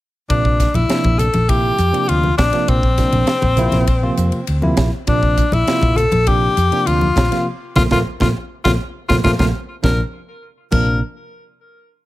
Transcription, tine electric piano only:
0.29 C3 F3 A#3 D4
0.89 C3 F3 A#3 D4
1.48 C3 F3 A#3 E4
1.92 C3 F3 A#3 D4
2.53 C3 F3 A#3 D4
2.98 C3 F3 A#3 D4
3.57 C3 F3 A#3 E4
4.02 C3 F3 A#3 F4
4.62 C3 F3 A#3 E4
5.07 C3 F3 A#3 D4
5.67 C3 F3 A#3 F4
6.26 C3 F3 A#3 D4
6.71 C3 F3 A#3 D4
7.31 C3 F3 A#3 F4
7.77 F3 A3 A#3
7.91 F3 A3 A#3
8.21 F3 A3 A#3
8.65 F3 A3 A#3
9.09 F3 A3 A#3
9.24 F3 A3 A#3
9.39 F3 A3 A#3
9.83 C3 F3 A#3 D4
10.71 C3 F3 A#3 D4

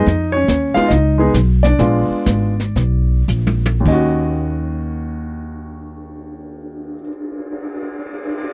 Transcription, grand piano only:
Already playing: D#4 D#5
0.32 C#5
0.37 C#4
0.74 G#3 B3 D#4 F4 F5
0.88 D#5
0.94 D#4
1.18 G#3 B3 D#4 G#4
1.63 D4 D5
1.79 G#3 B3 D4 F4
3.80 D#2
3.85 D#3 C#4 D#5
3.92 F#4

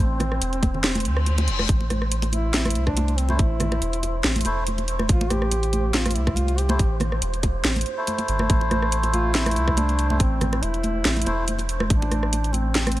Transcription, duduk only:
0.00 C4
2.33 E4
2.54 E4
2.87 D4
3.18 C4
3.39 E4
5.10 F4
5.31 G4
5.94 F4
6.15 E4
6.36 F4
6.58 G4
9.13 F4
9.35 E4
9.77 D4
10.20 C4
10.62 E4
11.91 D4
12.54 C4
12.75 C4

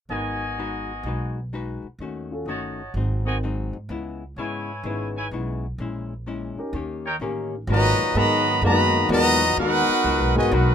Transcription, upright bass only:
0.09 G#1
1.03 B1
1.82 muted upright bass stroke
1.99 D#2
2.46 G1
2.94 G#1
3.73 G#2
3.89 C#2
4.36 G#2
4.83 G#1
5.31 B1
5.78 A#1
6.58 muted upright bass stroke
6.73 D#2
7.20 A1
7.67 G#1
7.99 muted upright bass stroke
8.15 G#2
8.62 F#2
9.09 E2
9.57 D#2
9.88 muted upright bass stroke
10.04 C#2
10.20 B1
10.35 G#1
10.51 B1

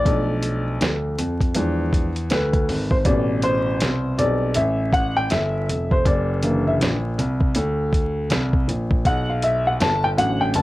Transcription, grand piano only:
0.06 B1
0.81 D2
1.18 F2
1.56 E2
2.31 D2
2.69 G#1
3.06 A1
3.81 C2
4.19 B1
4.56 A1
5.31 G1
5.68 F1
6.06 F#1
6.81 A#1
7.18 C2
7.56 D2
8.30 C2
8.68 A#1
9.05 B1
9.80 G1
10.18 A1
10.55 F#1

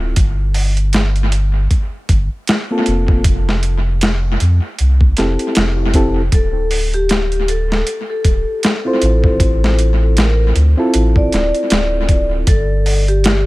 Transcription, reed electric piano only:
Already playing: C4 E4 F4 A4
2.71 A#3 C4 F4 A4
5.18 C4 E4 G4 A4
5.95 C4 E4 G4 A4
8.85 C4 E4 F4 C5
10.77 C4 E4 F4 A4

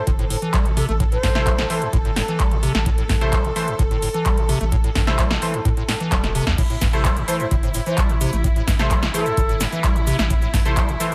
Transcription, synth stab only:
1.35 A3 E4 C5
1.70 A3 E4 C5
3.21 A3 E4 C5
3.56 A3 E4 C5
5.07 A3 E4 C5
5.42 A3 E4 C5
6.93 A3 E4 C5
7.28 A3 E4 C5
8.79 A3 E4 C5
9.14 A3 E4 C5
10.65 A3 E4 C5
11.00 A3 E4 C5

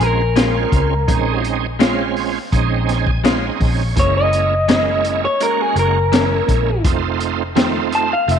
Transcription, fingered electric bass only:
0.00 A#1
0.72 C#2
1.08 A#1
2.53 A#1
3.60 A#1
3.96 F#1
5.76 F#1
6.48 A#1
6.84 F1
8.28 F1

